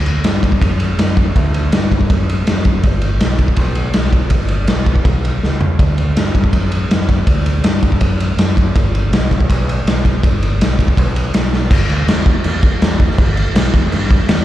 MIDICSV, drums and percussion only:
0, 0, Header, 1, 2, 480
1, 0, Start_track
1, 0, Tempo, 369458
1, 1755, Time_signature, 4, 2, 24, 8
1, 18771, End_track
2, 0, Start_track
2, 0, Title_t, "Drums"
2, 77, Note_on_c, 9, 51, 73
2, 207, Note_off_c, 9, 51, 0
2, 312, Note_on_c, 9, 51, 101
2, 321, Note_on_c, 9, 38, 116
2, 442, Note_off_c, 9, 51, 0
2, 451, Note_off_c, 9, 38, 0
2, 558, Note_on_c, 9, 36, 72
2, 565, Note_on_c, 9, 51, 65
2, 676, Note_off_c, 9, 36, 0
2, 676, Note_on_c, 9, 36, 73
2, 695, Note_off_c, 9, 51, 0
2, 799, Note_off_c, 9, 36, 0
2, 799, Note_on_c, 9, 36, 90
2, 804, Note_on_c, 9, 51, 100
2, 929, Note_off_c, 9, 36, 0
2, 934, Note_off_c, 9, 51, 0
2, 1035, Note_on_c, 9, 51, 77
2, 1165, Note_off_c, 9, 51, 0
2, 1282, Note_on_c, 9, 51, 102
2, 1291, Note_on_c, 9, 38, 109
2, 1412, Note_off_c, 9, 51, 0
2, 1421, Note_off_c, 9, 38, 0
2, 1517, Note_on_c, 9, 51, 68
2, 1520, Note_on_c, 9, 36, 81
2, 1647, Note_off_c, 9, 51, 0
2, 1650, Note_off_c, 9, 36, 0
2, 1763, Note_on_c, 9, 51, 86
2, 1764, Note_on_c, 9, 36, 106
2, 1893, Note_off_c, 9, 51, 0
2, 1894, Note_off_c, 9, 36, 0
2, 2003, Note_on_c, 9, 51, 75
2, 2133, Note_off_c, 9, 51, 0
2, 2237, Note_on_c, 9, 51, 96
2, 2246, Note_on_c, 9, 38, 116
2, 2367, Note_off_c, 9, 51, 0
2, 2376, Note_off_c, 9, 38, 0
2, 2488, Note_on_c, 9, 36, 71
2, 2492, Note_on_c, 9, 51, 68
2, 2608, Note_off_c, 9, 36, 0
2, 2608, Note_on_c, 9, 36, 76
2, 2622, Note_off_c, 9, 51, 0
2, 2728, Note_off_c, 9, 36, 0
2, 2728, Note_on_c, 9, 36, 97
2, 2728, Note_on_c, 9, 51, 87
2, 2858, Note_off_c, 9, 36, 0
2, 2858, Note_off_c, 9, 51, 0
2, 2981, Note_on_c, 9, 51, 71
2, 3111, Note_off_c, 9, 51, 0
2, 3207, Note_on_c, 9, 51, 86
2, 3216, Note_on_c, 9, 38, 105
2, 3335, Note_off_c, 9, 38, 0
2, 3335, Note_on_c, 9, 38, 36
2, 3337, Note_off_c, 9, 51, 0
2, 3438, Note_on_c, 9, 51, 63
2, 3446, Note_on_c, 9, 36, 84
2, 3465, Note_off_c, 9, 38, 0
2, 3568, Note_off_c, 9, 51, 0
2, 3576, Note_off_c, 9, 36, 0
2, 3681, Note_on_c, 9, 51, 85
2, 3686, Note_on_c, 9, 36, 106
2, 3811, Note_off_c, 9, 51, 0
2, 3816, Note_off_c, 9, 36, 0
2, 3917, Note_on_c, 9, 51, 70
2, 4047, Note_off_c, 9, 51, 0
2, 4163, Note_on_c, 9, 51, 94
2, 4172, Note_on_c, 9, 38, 115
2, 4293, Note_off_c, 9, 51, 0
2, 4302, Note_off_c, 9, 38, 0
2, 4398, Note_on_c, 9, 51, 63
2, 4403, Note_on_c, 9, 36, 69
2, 4524, Note_off_c, 9, 36, 0
2, 4524, Note_on_c, 9, 36, 71
2, 4528, Note_off_c, 9, 51, 0
2, 4630, Note_on_c, 9, 51, 94
2, 4642, Note_off_c, 9, 36, 0
2, 4642, Note_on_c, 9, 36, 89
2, 4760, Note_off_c, 9, 51, 0
2, 4771, Note_off_c, 9, 36, 0
2, 4874, Note_on_c, 9, 51, 75
2, 5004, Note_off_c, 9, 51, 0
2, 5112, Note_on_c, 9, 51, 104
2, 5121, Note_on_c, 9, 38, 110
2, 5242, Note_off_c, 9, 51, 0
2, 5250, Note_off_c, 9, 38, 0
2, 5250, Note_on_c, 9, 38, 34
2, 5360, Note_on_c, 9, 36, 85
2, 5361, Note_on_c, 9, 51, 64
2, 5380, Note_off_c, 9, 38, 0
2, 5490, Note_off_c, 9, 36, 0
2, 5491, Note_off_c, 9, 51, 0
2, 5584, Note_on_c, 9, 51, 100
2, 5596, Note_on_c, 9, 36, 105
2, 5714, Note_off_c, 9, 51, 0
2, 5726, Note_off_c, 9, 36, 0
2, 5826, Note_on_c, 9, 51, 73
2, 5956, Note_off_c, 9, 51, 0
2, 6072, Note_on_c, 9, 51, 104
2, 6082, Note_on_c, 9, 38, 107
2, 6202, Note_off_c, 9, 51, 0
2, 6211, Note_off_c, 9, 38, 0
2, 6317, Note_on_c, 9, 51, 63
2, 6319, Note_on_c, 9, 36, 68
2, 6438, Note_off_c, 9, 36, 0
2, 6438, Note_on_c, 9, 36, 81
2, 6447, Note_off_c, 9, 51, 0
2, 6562, Note_off_c, 9, 36, 0
2, 6562, Note_on_c, 9, 36, 99
2, 6562, Note_on_c, 9, 51, 83
2, 6692, Note_off_c, 9, 36, 0
2, 6692, Note_off_c, 9, 51, 0
2, 6816, Note_on_c, 9, 51, 68
2, 6946, Note_off_c, 9, 51, 0
2, 7060, Note_on_c, 9, 38, 61
2, 7190, Note_off_c, 9, 38, 0
2, 7285, Note_on_c, 9, 43, 91
2, 7415, Note_off_c, 9, 43, 0
2, 7526, Note_on_c, 9, 36, 107
2, 7526, Note_on_c, 9, 51, 90
2, 7656, Note_off_c, 9, 36, 0
2, 7656, Note_off_c, 9, 51, 0
2, 7766, Note_on_c, 9, 51, 68
2, 7896, Note_off_c, 9, 51, 0
2, 8010, Note_on_c, 9, 51, 98
2, 8019, Note_on_c, 9, 38, 111
2, 8139, Note_off_c, 9, 51, 0
2, 8149, Note_off_c, 9, 38, 0
2, 8247, Note_on_c, 9, 36, 77
2, 8249, Note_on_c, 9, 51, 57
2, 8364, Note_off_c, 9, 36, 0
2, 8364, Note_on_c, 9, 36, 83
2, 8379, Note_off_c, 9, 51, 0
2, 8481, Note_on_c, 9, 51, 101
2, 8483, Note_off_c, 9, 36, 0
2, 8483, Note_on_c, 9, 36, 97
2, 8611, Note_off_c, 9, 51, 0
2, 8613, Note_off_c, 9, 36, 0
2, 8725, Note_on_c, 9, 51, 74
2, 8855, Note_off_c, 9, 51, 0
2, 8973, Note_on_c, 9, 51, 90
2, 8983, Note_on_c, 9, 38, 115
2, 9102, Note_off_c, 9, 38, 0
2, 9102, Note_on_c, 9, 38, 35
2, 9103, Note_off_c, 9, 51, 0
2, 9207, Note_on_c, 9, 51, 67
2, 9208, Note_on_c, 9, 36, 80
2, 9216, Note_off_c, 9, 38, 0
2, 9216, Note_on_c, 9, 38, 31
2, 9337, Note_off_c, 9, 51, 0
2, 9338, Note_off_c, 9, 36, 0
2, 9346, Note_off_c, 9, 38, 0
2, 9443, Note_on_c, 9, 51, 100
2, 9446, Note_on_c, 9, 36, 110
2, 9573, Note_off_c, 9, 51, 0
2, 9576, Note_off_c, 9, 36, 0
2, 9690, Note_on_c, 9, 51, 78
2, 9820, Note_off_c, 9, 51, 0
2, 9923, Note_on_c, 9, 51, 105
2, 9932, Note_on_c, 9, 38, 112
2, 10053, Note_off_c, 9, 51, 0
2, 10062, Note_off_c, 9, 38, 0
2, 10167, Note_on_c, 9, 51, 70
2, 10170, Note_on_c, 9, 36, 77
2, 10291, Note_off_c, 9, 36, 0
2, 10291, Note_on_c, 9, 36, 70
2, 10297, Note_off_c, 9, 51, 0
2, 10401, Note_on_c, 9, 51, 91
2, 10410, Note_off_c, 9, 36, 0
2, 10410, Note_on_c, 9, 36, 101
2, 10531, Note_off_c, 9, 51, 0
2, 10540, Note_off_c, 9, 36, 0
2, 10656, Note_on_c, 9, 51, 75
2, 10786, Note_off_c, 9, 51, 0
2, 10892, Note_on_c, 9, 51, 96
2, 10901, Note_on_c, 9, 38, 104
2, 11022, Note_off_c, 9, 51, 0
2, 11031, Note_off_c, 9, 38, 0
2, 11135, Note_on_c, 9, 36, 85
2, 11142, Note_on_c, 9, 51, 66
2, 11265, Note_off_c, 9, 36, 0
2, 11272, Note_off_c, 9, 51, 0
2, 11376, Note_on_c, 9, 36, 112
2, 11378, Note_on_c, 9, 51, 92
2, 11506, Note_off_c, 9, 36, 0
2, 11508, Note_off_c, 9, 51, 0
2, 11624, Note_on_c, 9, 51, 66
2, 11754, Note_off_c, 9, 51, 0
2, 11859, Note_on_c, 9, 51, 89
2, 11868, Note_on_c, 9, 38, 109
2, 11989, Note_off_c, 9, 51, 0
2, 11998, Note_off_c, 9, 38, 0
2, 12099, Note_on_c, 9, 36, 76
2, 12112, Note_on_c, 9, 51, 64
2, 12219, Note_off_c, 9, 36, 0
2, 12219, Note_on_c, 9, 36, 79
2, 12242, Note_off_c, 9, 51, 0
2, 12338, Note_off_c, 9, 36, 0
2, 12338, Note_on_c, 9, 36, 98
2, 12344, Note_on_c, 9, 51, 94
2, 12468, Note_off_c, 9, 36, 0
2, 12474, Note_off_c, 9, 51, 0
2, 12592, Note_on_c, 9, 51, 68
2, 12722, Note_off_c, 9, 51, 0
2, 12826, Note_on_c, 9, 51, 91
2, 12835, Note_on_c, 9, 38, 101
2, 12956, Note_off_c, 9, 51, 0
2, 12965, Note_off_c, 9, 38, 0
2, 13057, Note_on_c, 9, 36, 77
2, 13063, Note_on_c, 9, 51, 66
2, 13072, Note_on_c, 9, 38, 32
2, 13187, Note_off_c, 9, 36, 0
2, 13193, Note_off_c, 9, 51, 0
2, 13202, Note_off_c, 9, 38, 0
2, 13296, Note_on_c, 9, 36, 108
2, 13300, Note_on_c, 9, 51, 95
2, 13426, Note_off_c, 9, 36, 0
2, 13430, Note_off_c, 9, 51, 0
2, 13544, Note_on_c, 9, 51, 71
2, 13674, Note_off_c, 9, 51, 0
2, 13787, Note_on_c, 9, 51, 104
2, 13796, Note_on_c, 9, 38, 105
2, 13917, Note_off_c, 9, 51, 0
2, 13926, Note_off_c, 9, 38, 0
2, 14017, Note_on_c, 9, 36, 71
2, 14031, Note_on_c, 9, 51, 74
2, 14138, Note_off_c, 9, 36, 0
2, 14138, Note_on_c, 9, 36, 74
2, 14161, Note_off_c, 9, 51, 0
2, 14257, Note_off_c, 9, 36, 0
2, 14257, Note_on_c, 9, 36, 100
2, 14265, Note_on_c, 9, 51, 94
2, 14387, Note_off_c, 9, 36, 0
2, 14395, Note_off_c, 9, 51, 0
2, 14500, Note_on_c, 9, 51, 77
2, 14630, Note_off_c, 9, 51, 0
2, 14731, Note_on_c, 9, 51, 98
2, 14740, Note_on_c, 9, 38, 108
2, 14861, Note_off_c, 9, 51, 0
2, 14866, Note_off_c, 9, 38, 0
2, 14866, Note_on_c, 9, 38, 34
2, 14980, Note_off_c, 9, 38, 0
2, 14980, Note_on_c, 9, 38, 57
2, 15110, Note_off_c, 9, 38, 0
2, 15209, Note_on_c, 9, 49, 120
2, 15209, Note_on_c, 9, 57, 84
2, 15211, Note_on_c, 9, 36, 114
2, 15339, Note_off_c, 9, 49, 0
2, 15339, Note_off_c, 9, 57, 0
2, 15341, Note_off_c, 9, 36, 0
2, 15455, Note_on_c, 9, 57, 66
2, 15585, Note_off_c, 9, 57, 0
2, 15695, Note_on_c, 9, 57, 97
2, 15704, Note_on_c, 9, 38, 113
2, 15825, Note_off_c, 9, 57, 0
2, 15834, Note_off_c, 9, 38, 0
2, 15922, Note_on_c, 9, 57, 61
2, 15928, Note_on_c, 9, 36, 86
2, 16052, Note_off_c, 9, 57, 0
2, 16058, Note_off_c, 9, 36, 0
2, 16163, Note_on_c, 9, 57, 88
2, 16293, Note_off_c, 9, 57, 0
2, 16402, Note_on_c, 9, 57, 69
2, 16409, Note_on_c, 9, 36, 99
2, 16532, Note_off_c, 9, 57, 0
2, 16539, Note_off_c, 9, 36, 0
2, 16651, Note_on_c, 9, 57, 79
2, 16660, Note_on_c, 9, 38, 105
2, 16781, Note_off_c, 9, 57, 0
2, 16790, Note_off_c, 9, 38, 0
2, 16884, Note_on_c, 9, 57, 69
2, 16888, Note_on_c, 9, 36, 90
2, 17014, Note_off_c, 9, 57, 0
2, 17018, Note_off_c, 9, 36, 0
2, 17023, Note_on_c, 9, 38, 35
2, 17126, Note_on_c, 9, 57, 91
2, 17129, Note_on_c, 9, 36, 109
2, 17153, Note_off_c, 9, 38, 0
2, 17256, Note_off_c, 9, 57, 0
2, 17259, Note_off_c, 9, 36, 0
2, 17370, Note_on_c, 9, 57, 75
2, 17500, Note_off_c, 9, 57, 0
2, 17610, Note_on_c, 9, 57, 106
2, 17619, Note_on_c, 9, 38, 127
2, 17740, Note_off_c, 9, 57, 0
2, 17749, Note_off_c, 9, 38, 0
2, 17847, Note_on_c, 9, 36, 80
2, 17854, Note_on_c, 9, 57, 67
2, 17977, Note_off_c, 9, 36, 0
2, 17984, Note_off_c, 9, 57, 0
2, 18085, Note_on_c, 9, 57, 90
2, 18215, Note_off_c, 9, 57, 0
2, 18326, Note_on_c, 9, 36, 95
2, 18331, Note_on_c, 9, 57, 70
2, 18456, Note_off_c, 9, 36, 0
2, 18461, Note_off_c, 9, 57, 0
2, 18558, Note_on_c, 9, 57, 91
2, 18567, Note_on_c, 9, 38, 123
2, 18688, Note_off_c, 9, 57, 0
2, 18697, Note_off_c, 9, 38, 0
2, 18771, End_track
0, 0, End_of_file